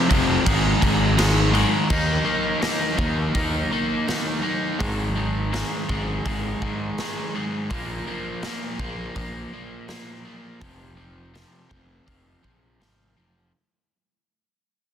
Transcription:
0.09 F1 F2 C3 F3, kick, crash
0.46 G#1 G#2 D#3 G#3, kick, crash
0.81 G#1 G#2 D#3 G#3, kick, crash
1.17 G#2 D#3 G#3, snare, crash
1.53 G#2 D#3 G#3, crash
1.90 D#2 D#3 A#3 D#4, kick, crash
2.24 D#3 A#3 D#4
2.61 D#3 A#3 D#4, snare, open hi-hat
2.97 D#2 D#3 A#3 D#4, kick
3.35 D#2 D#3 A#3 D#4, kick, open hi-hat
3.71 D#3 A#3 D#4
4.07 D#3 A#3 D#4, snare, open hi-hat
4.42 D#3 A#3 D#4
4.79 G#1 G#2 D#3 G#3, kick, open hi-hat
5.15 G#2 D#3 G#3
5.52 G#2 D#3 G#3, snare, open hi-hat
5.88 G#1 G#2 D#3 G#3, kick
6.25 G#1 G#2 D#3 G#3, kick, open hi-hat
6.62 G#2 D#3 G#3, kick
6.98 G#2 D#3 G#3, snare, open hi-hat
7.35 G#2 D#3 G#3
7.70 A#1 A#2 F3 A#3, kick, open hi-hat
8.07 A#2 F3 A#3
8.43 A#2 F3 A#3, snare, open hi-hat
8.79 A#1 A#2 F3 A#3, kick
9.15 A#1 A#2 F3 A#3, kick, open hi-hat
9.53 A#2 F3 A#3
9.88 A#2 F3 A#3, snare, open hi-hat
10.25 A#2 F3 A#3
10.61 F1 F2 C3 F3, kick, open hi-hat
10.96 F2 C3 F3
11.34 F2 C3 F3, snare, open hi-hat
11.69 F1 F2 C3 F3, kick
12.06 F1 F2 C3 F3, kick, open hi-hat
12.43 A#1 F2 C3 F3, kick
12.80 G#1 F2 C3 F3, snare, open hi-hat
13.16 F1 F2 C3 F3

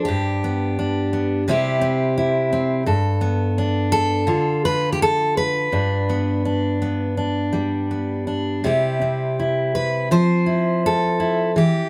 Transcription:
Already playing: D4
0.05 G2 G4
0.44 B3
0.79 D4
1.13 B3
1.48 C3 G3 C4 E4 G4
1.81 C4
2.18 E4
2.53 C4
2.86 G2 A4
3.21 B3
3.58 D4
3.92 A4
4.27 D3 F4
4.65 B4
4.92 G4
5.02 A4
5.37 B4
5.72 G2 D4
6.09 B3
6.45 D4
6.82 B3
7.17 D4
7.53 G3
7.91 B3
8.27 D4
8.64 C3 G3 C4 E4 G4
9.02 C4
9.40 E4
9.75 B4
10.11 F3 C5
10.46 E4
10.86 A4
11.20 E4
11.56 E3 G4

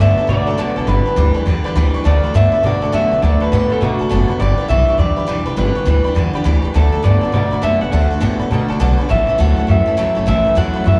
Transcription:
0.00 G2 D3 A3 B3 D4 F#4 A4 D5 E5 F#5 A5
0.17 D4 F#4 A4 D5 F#5 A5, muted upright bass stroke
0.27 B2 D3 A3 D4 F#4 A4 D5 F#5 B5
0.47 D4 F#4 A4 D5 F#5 A5, muted upright bass stroke
0.57 F#2 D3 A3 B3 D4 F#4 A4 D5 F#5 A5
0.76 B1 D4 F#4 A4 D5 F#5 A5
0.87 G1 G2 D3 G3 D4 G4 B4 D5 G5 B5
1.05 D4 G4 B4 D5 G5 A5
1.16 D2 G2 E3 G3 D4 G4 B4 D5 G5 D6
1.34 D4 G4 B4 D5 G5 B5, muted upright bass stroke
1.46 E2 G2 D3 G3 D4 G4 B4 D5 G5 B5
1.64 D4 G4 B4 D5 G5 B5, muted upright bass stroke
1.75 D2 G2 E3 G3 D4 G4 B4 D5 G5 B5
1.94 D4 G4 B4 D5 G5 C#6
2.04 D2 D3 A3 D4 F#4 A4 D5 F#5 A5
2.23 D4 F#4 A4 D5 F#5 B5, muted upright bass stroke
2.34 G2 D3 A3 B3 D4 F#4 A4 D5 E5 F#5 A5
2.52 D4 F#4 A4 D5 F#5 B5, muted upright bass stroke
2.63 B2 D3 A3 D4 F#4 A4 D5 F#5 A5
2.82 D4 F#4 A4 D5 F#5 A5, muted upright bass stroke
2.92 F#2 D3 A3 B3 D4 F#4 A4 D5 E5 F#5 A5
3.11 B1 D4 F#4 A4 D5 F#5 A5
3.22 D2 D3 A3 D4 F#4 A4 D5 F#5 A5
3.40 D4 F#4 A4 B4 D5 F#5 A5, muted upright bass stroke
3.52 A2 D3 A3 B3 D4 F#4 A4 D5 F#5 A5
3.70 D4 F#4 A4 D5 F#5 B5, muted upright bass stroke
3.81 B2 D3 A3 D4 F#4 A4 D5 F#5 A5
3.99 D4 F#4 A4 D5 F#5 A5, muted upright bass stroke
4.09 F#1 D3 A3 B3 D4 F#4 A4 D5 F#5 A5
4.28 D4 F#4 A4 D5 F#5 B5, muted upright bass stroke
4.39 G1 G2 D3 G3 D4 G4 B4 D5 G5 B5
4.58 D4 G4 B4 D5 G5 B5, muted upright bass stroke
4.68 B1 G2 E3 G3 D4 G4 B4 D5 E5 G5 C#6
4.87 D4 G4 B4 D5 G5 C#6
4.98 E2 G2 D3 G3 D4 G4 B4 D5 G5 B5
5.16 D4 G4 B4 D5 G5 B5, muted upright bass stroke
5.27 B1 G2 E3 G3 D4 G4 B4 D5 G5 B5
5.46 E1 D4 G4 B4 D5 G5 B5
5.56 G1 G2 D3 G3 D4 G4 B4 D5 G5 B5
5.75 D4 G4 B4 D5 G5 C#6, muted upright bass stroke
5.85 D2 G2 E3 G3 D4 G4 B4 D5 G5 B5
6.04 D4 G4 B4 D5 G5 B5, muted upright bass stroke
6.15 E2 G2 D3 G3 D4 G4 B4 D5 G5 B5
6.33 D4 G4 B4 D5 G5 B5, muted upright bass stroke
6.44 D2 G2 E3 G3 D4 G4 B4 D5 G5 B5
6.62 D4 G4 B4 D5 G5 B5, muted upright bass stroke
6.74 D2 D3 A3 D4 F#4 A4 D5 F#5 A5
6.92 D4 F#4 A4 D5 F#5 A5
7.03 G2 D3 A3 B3 D4 F#4 A4 D5 F#5 B5
7.21 D4 F#4 A4 D5 F#5 A5, muted upright bass stroke
7.32 B2 D3 A3 D4 F#4 A4 D5 F#5 B5
7.51 D4 F#4 A4 D5 F#5 B5, muted upright bass stroke
7.62 F#2 D3 A3 B3 D4 F#4 A4 D5 E5 F#5 A5
7.81 B1 D4 F#4 A4 D5 F#5 A5
7.91 D2 D3 A3 D4 F#4 A4 D5 F#5 A5
8.10 D4 F#4 A4 D5 F#5 A5, muted upright bass stroke
8.20 A2 D3 A3 B3 D4 F#4 A4 D5 F#5 A5
8.39 D4 F#4 A4 D5 F#5 B5, muted upright bass stroke
8.51 B2 D3 A3 D4 F#4 A4 D5 F#5 A5
8.68 D4 F#4 A4 D5 F#5 A5, muted upright bass stroke
8.79 B1 D3 A3 B3 D4 F#4 A4 D5 F#5 A5
8.98 D4 F#4 A4 D5 F#5 B5, muted upright bass stroke
9.09 A1 A2 E3 A3 C#4 E4 A4 C#5 E5 A5
9.27 A3 C#4 E4 A4 C#5 E5 A5, muted upright bass stroke
9.38 D2 A2 E3 F#3 A3 C#4 E4 A4 C#5 E5 F#5 A5
9.56 A3 C#4 E4 A4 C#5 E5 A5, muted upright bass stroke
9.67 F#2 A2 E3 A3 C#4 E4 A4 C#5 E5 G5
9.86 A3 C#4 E4 A4 C#5 E5 A5, muted upright bass stroke
9.97 C#2 A2 E3 F#3 A3 C#4 E4 A4 C#5 E5 A5
10.15 G1 A3 C#4 E4 A4 C#5 E5 A5
10.26 A1 A2 E3 A3 C#4 E4 A4 C#5 E5 A5
10.45 A3 C#4 E4 A4 C#5 E5 A5, muted upright bass stroke
10.55 E2 A2 E3 F#3 A3 C#4 E4 A4 C#5 E5 F#5 A5
10.73 A3 C#4 E4 A4 C#5 E5 B5, muted upright bass stroke
10.84 F#2 A2 E3 A3 C#4 E4 A4 C#5 E5 B5

